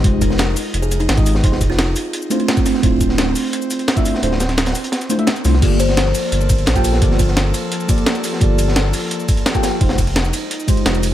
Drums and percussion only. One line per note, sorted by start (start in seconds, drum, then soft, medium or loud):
0.04 kick loud
0.04 closed hi-hat medium
0.22 kick medium
0.22 closed hi-hat medium
0.22 shaker medium
0.30 snare soft
0.38 snare loud
0.38 closed hi-hat medium
0.56 open hi-hat medium
0.56 shaker medium
0.74 closed hi-hat medium
0.83 shaker soft
0.91 closed hi-hat medium
0.91 shaker medium
1.00 closed hi-hat soft
1.09 snare loud
1.09 closed hi-hat medium
1.18 kick loud
1.18 closed hi-hat soft
1.18 shaker soft
1.26 closed hi-hat medium
1.26 open hi-hat medium
1.26 shaker medium
1.35 snare medium
1.44 kick loud
1.44 closed hi-hat medium
1.52 snare medium
1.61 kick medium
1.61 closed hi-hat medium
1.61 shaker medium
1.71 snare soft
1.79 snare loud
1.79 closed hi-hat medium
1.96 closed hi-hat medium
1.96 open hi-hat medium
1.96 shaker medium
2.13 closed hi-hat loud
2.13 closed hi-hat medium
2.22 shaker soft
2.31 closed hi-hat medium
2.31 shaker medium
2.40 closed hi-hat soft
2.48 snare loud
2.48 closed hi-hat medium
2.57 kick loud
2.57 closed hi-hat soft
2.57 shaker soft
2.65 snare soft
2.65 closed hi-hat medium
2.65 open hi-hat medium
2.65 shaker medium
2.74 snare soft
2.83 kick loud
2.83 closed hi-hat medium
3.01 kick medium
3.01 closed hi-hat medium
3.01 shaker medium
3.09 snare soft
3.18 snare loud
3.18 closed hi-hat medium
3.36 open hi-hat medium
3.36 shaker medium
3.53 closed hi-hat loud
3.53 closed hi-hat medium
3.62 shaker soft
3.71 closed hi-hat medium
3.71 shaker medium
3.79 closed hi-hat soft
3.88 snare loud
3.88 closed hi-hat medium
3.97 kick loud
3.97 closed hi-hat soft
3.97 shaker soft
4.06 closed hi-hat medium
4.06 open hi-hat medium
4.06 shaker medium
4.14 snare medium
4.23 closed hi-hat medium
4.31 snare medium
4.40 snare loud
4.40 closed hi-hat medium
4.40 shaker medium
4.49 snare soft
4.49 closed hi-hat soft
4.57 snare loud
4.57 closed hi-hat medium
4.57 closed hi-hat loud
4.66 snare loud
4.66 closed hi-hat medium
4.66 shaker soft
4.75 open hi-hat medium
4.75 shaker medium
4.84 closed hi-hat medium
4.92 snare loud
4.92 closed hi-hat medium
4.92 closed hi-hat loud
5.01 closed hi-hat soft
5.01 shaker soft
5.10 closed hi-hat medium
5.10 shaker medium
5.19 closed hi-hat soft
5.27 snare loud
5.27 closed hi-hat medium
5.36 closed hi-hat soft
5.36 shaker soft
5.45 snare soft
5.45 closed hi-hat medium
5.45 open hi-hat medium
5.45 shaker medium
5.53 snare soft
5.62 kick loud
5.62 closed hi-hat medium
5.62 closed hi-hat loud
5.62 crash loud
5.79 closed hi-hat medium
5.79 ride medium
5.79 shaker medium
5.89 snare soft
5.97 snare loud
5.97 closed hi-hat loud
5.97 closed hi-hat medium
6.15 open hi-hat medium
6.15 ride medium
6.15 shaker medium
6.32 closed hi-hat loud
6.41 shaker soft
6.50 kick loud
6.50 closed hi-hat medium
6.50 ride medium
6.50 shaker medium
6.58 closed hi-hat soft
6.66 snare loud
6.66 closed hi-hat medium
6.66 closed hi-hat loud
6.76 kick medium
6.76 closed hi-hat soft
6.76 shaker soft
6.84 closed hi-hat medium
6.84 open hi-hat medium
6.84 ride medium
6.84 shaker medium
6.93 snare medium
7.02 kick loud
7.02 closed hi-hat loud
7.02 closed hi-hat medium
7.11 snare medium
7.19 kick medium
7.19 closed hi-hat medium
7.19 ride medium
7.19 shaker medium
7.28 snare soft
7.37 snare loud
7.37 closed hi-hat loud
7.37 closed hi-hat medium
7.54 closed hi-hat medium
7.54 open hi-hat medium
7.54 ride medium
7.54 shaker medium
7.72 closed hi-hat loud
7.72 closed hi-hat medium
7.80 shaker soft
7.89 kick loud
7.89 closed hi-hat medium
7.89 ride medium
7.89 shaker medium
7.98 closed hi-hat soft
8.06 snare loud
8.06 closed hi-hat medium
8.15 closed hi-hat soft
8.15 shaker soft
8.24 closed hi-hat medium
8.24 open hi-hat medium
8.24 ride medium
8.24 shaker medium
8.33 snare soft
8.41 kick loud
8.41 closed hi-hat medium
8.59 closed hi-hat medium
8.59 ride medium
8.59 shaker medium
8.68 snare soft
8.76 snare loud
8.76 closed hi-hat medium
8.76 closed hi-hat loud
8.94 open hi-hat medium
8.94 ride medium
8.94 shaker medium
9.11 closed hi-hat loud
9.20 shaker soft
9.29 kick loud
9.29 closed hi-hat medium
9.29 ride medium
9.29 shaker medium
9.37 closed hi-hat soft
9.46 snare loud
9.46 closed hi-hat medium
9.55 kick medium
9.55 closed hi-hat soft
9.55 shaker soft
9.63 snare loud
9.63 closed hi-hat medium
9.63 open hi-hat medium
9.63 ride medium
9.63 shaker medium
9.81 kick loud
9.81 closed hi-hat medium
9.81 open hi-hat medium
9.89 snare loud
9.89 closed hi-hat medium
9.98 kick medium
9.98 closed hi-hat medium
9.98 ride medium
9.98 shaker medium
10.07 closed hi-hat soft
10.07 open hi-hat medium
10.16 snare loud
10.16 closed hi-hat loud
10.16 closed hi-hat medium
10.25 shaker soft
10.33 closed hi-hat medium
10.33 open hi-hat medium
10.33 ride medium
10.33 shaker medium
10.51 closed hi-hat loud
10.51 closed hi-hat medium
10.60 shaker soft
10.68 kick loud
10.68 closed hi-hat medium
10.68 ride medium
10.68 shaker medium
10.77 closed hi-hat soft
10.86 snare loud
10.86 closed hi-hat medium
10.95 closed hi-hat soft
10.95 shaker soft
11.03 closed hi-hat medium
11.03 open hi-hat medium
11.03 ride medium
11.03 shaker medium